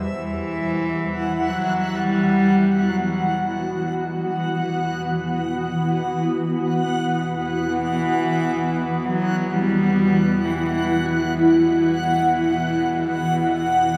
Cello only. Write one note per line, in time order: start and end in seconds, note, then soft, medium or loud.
0.10 1.50 E3 medium
1.48 1.96 F#3 medium
1.95 2.90 G3 loud
2.88 3.61 F#3 medium
7.64 9.06 E3 medium
9.05 9.54 F#3 loud
9.53 10.46 G3 loud
10.44 11.14 E3 medium